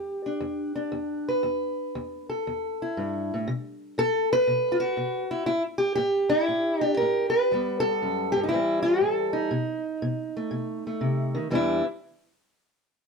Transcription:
Already playing: E2 G4
0.26 D4
0.41 E2
0.76 D4
0.92 E2
1.28 B4
1.43 E2
1.95 E2
2.30 A4
2.47 E2
2.82 E4
2.97 G2
3.34 A2
3.48 B2
3.98 B2 A4
4.33 B4
4.47 B2
4.72 F4
4.80 F#4
4.97 B2
5.31 E4
5.46 A2 E4
5.78 G4
5.95 A2 G4
6.30 E4
6.48 A2
6.81 D4 G4
6.97 A#4
7.02 A2
7.30 B4
7.51 E2 G3 B3
7.80 A4
8.02 F#2
8.32 G4
8.36 G2
8.43 D#4
8.49 A2 E4
8.53 E3 G3 C4
8.83 A4
9.01 A2
9.33 D#4
9.51 B2
10.02 B2
10.37 A3
10.51 B2
10.87 A3
11.01 C3
11.35 D#3
11.50 E2 E3 G3 D4
11.55 E4

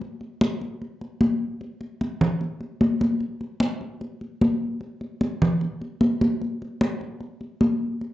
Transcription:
0.01 high conga
0.21 high conga
0.41 high conga
0.61 high conga
0.82 high conga
1.01 high conga
1.21 high conga
1.61 high conga
1.81 high conga
2.01 high conga
2.21 high conga, low conga
2.41 high conga
2.61 high conga
2.81 high conga
3.01 high conga
3.20 high conga
3.41 high conga
3.60 high conga
3.81 high conga
4.01 high conga
4.21 high conga
4.41 high conga
4.81 high conga
5.01 high conga
5.21 high conga
5.42 high conga, low conga
5.61 high conga
5.81 high conga
6.01 high conga
6.21 high conga
6.41 high conga
6.62 high conga
6.81 high conga
7.01 high conga
7.20 high conga
7.41 high conga
7.61 high conga
8.01 high conga

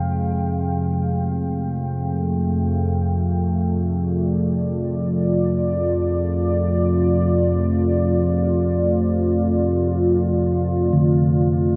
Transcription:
Already playing: F2 C3 G#3 G#4 F5 G5
0.77 A3
1.90 F4
3.48 D5
10.93 D3

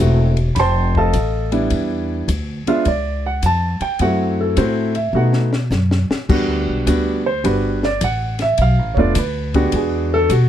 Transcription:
0.00 E1 A3 C4 E4 F#4
0.37 ride
0.55 F1 B5, kick, snare, ride
0.59 C5 G5 A5 C6
0.95 A4 D#5 F5 A5, kick
1.13 A1, kick, hi-hat pedal, ride
1.52 G3 B3 D4 E4, ride
1.70 E2, kick, ride
2.28 D2, kick, hi-hat pedal, ride
2.67 G#3 B3 D4 F4 E5, muted upright bass stroke, ride
2.85 C#2 D5, kick, ride
3.26 F#5
3.43 F2 A5, kick, hi-hat pedal, ride
3.81 G5, muted upright bass stroke, ride
3.99 F#2 A3 C4 E4 F#4 F#5, kick, ride
4.41 A4
4.57 A2 A3 C4 E4 F#4 C5, kick, hi-hat pedal, ride
4.95 E5, ride
5.13 B2 A3 B3 D#4 F#4 F#5
5.33 snare
5.53 snare
5.71 F#2, snare, hi-hat pedal
5.91 snare
6.10 muted upright bass stroke, snare
6.29 E2 G3 B3 D4 F#4, kick, crash
6.48 D2
6.68 B1
6.87 D2 G3 B3 D4 F#4, kick, hi-hat pedal, ride
7.26 C5
7.44 G1 G3 B3 D4 F#4 B4, kick, ride
7.83 D5, snare
8.01 A1 F#5, kick, hi-hat pedal, ride
8.39 E5, snare, ride
8.58 B1, kick, ride
8.62 F5
8.78 A1
8.95 F1 A3 B3 D4 F4 C#5, kick
9.00 D5
9.15 D2 B4, kick, hi-hat pedal, ride
9.54 G#3 B3 D4 F#4 G4, kick, ride
9.72 E2 G#4, kick, ride
10.14 A4
10.30 B2 F#4, kick, hi-hat pedal, ride

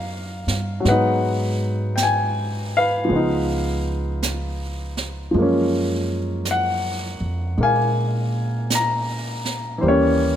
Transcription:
Already playing: F#2 F#3 A#3 C#4 D#4 F#4 D#5 F5
0.47 G2, snare
0.80 F#3
0.85 G#2 G#3 B3 F#5, brush sweep, snare
0.89 D#4 B4
1.96 G5, brush sweep, snare, hi-hat pedal
2.03 G#5
2.77 B4 F5
3.05 F3
3.09 C#2 G#3 B3, brush sweep
3.16 D#4
4.23 brush sweep, snare, hi-hat pedal
4.97 snare
5.31 F#2 F3 G#3, brush sweep
5.38 A#3 C#4
6.45 brush sweep, snare, hi-hat pedal
6.51 F#5
7.20 F2
7.58 A#2 G#3 A#3, brush sweep
7.63 F5 G#5
8.70 brush sweep, snare, hi-hat pedal
8.75 A#5
9.45 snare
9.78 E3 G3 C5
9.83 D#2 A#3, brush sweep
9.88 C#4 G4 C#5

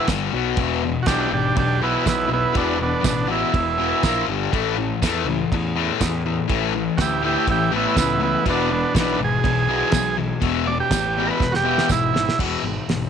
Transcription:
0.08 G1 G2 D3 G3, kick, snare, tambourine, crash
0.33 B1 B2 F#3 B3
0.57 E1 E2 B2 E3, kick, crash
0.83 E2 B2
1.03 B1 F#4, crash
1.07 E2 B2 E3 D4 G4, kick, snare, tambourine
1.31 G#1 E2 B2 D4 G4
1.56 B1 E2 B2 D4 G4, kick, crash
1.82 E2 B2 E3 B3 E4
2.05 B1 E2 B2 B3, kick, snare, tambourine, crash
2.09 E4
2.28 E2 B2
2.33 B3 E4
2.52 E1 E2 B2 E3, kick, crash
2.57 B3 D4
2.78 E2 B2
2.82 B3 D4
3.01 A1 E2 B2, kick, snare, tambourine, crash
3.05 B3 D4
3.27 E2 B2 E3
3.32 E4
3.54 E1 E2 B2, kick, crash
3.78 E2 B2 E3
4.03 A#1 A#2 F3 A#3, kick, snare, tambourine, crash
4.28 G1 G2 D3 G3
4.52 A1 A2 E3 A3, kick, crash
4.77 A2 E3
5.02 E2 A2 E3 A3, kick, snare, tambourine, crash
5.24 C#2 A2
5.28 E3
5.51 E2 A2 E3, kick, crash
5.76 A2 E3 A3
6.01 E2 A2 E3, kick, snare, tambourine, crash
6.26 A2 E3
6.48 A1 A2 E3 A3, kick, crash
6.74 A2 E3
6.97 D2 A2 E3 F#4 G4, kick, snare, tambourine, crash
7.02 E4
7.22 A2 E3 A3 E4
7.26 G4
7.47 A1 A2 E3 E4, kick, crash
7.51 G4
7.70 A2 E3 A3
7.76 B3 E4
7.96 C#2 A2 E3 B3 E4, kick, snare, tambourine, crash
8.20 A2 E3 B3 E4
8.45 E1 E2 B2 E3, kick, crash
8.50 B3 D4
8.71 E2 B2 B3 D4
8.94 B1 E2 B2 E3, kick, snare, tambourine, crash
9.00 B3 D4
9.19 G#1 E2 B2
9.24 G#4
9.44 B1 E2 B2, kick, crash
9.68 E2 B2 E3
9.92 B1 E2 B2, kick, snare, tambourine, crash
10.18 E2 B2
10.41 E1 E2 B2 E3, kick, crash
10.67 E2 B2 D5
10.80 G4
10.90 A1 E2 B2, kick, snare, tambourine, crash
11.18 E2 B2 E3
11.27 A#4
11.31 B4
11.40 E1 E2 B2, kick, snare
11.52 F#4 G4, snare
11.64 E2 B2 E3
11.78 snare
11.89 G#1 E2 B2 E4, kick, snare, tambourine
12.14 E2 B2, snare
12.29 snare
12.39 E1 E2 B2 E3, kick, crash
12.63 G#1 E2 B2
12.88 G#1 E2 B2, snare, open hi-hat

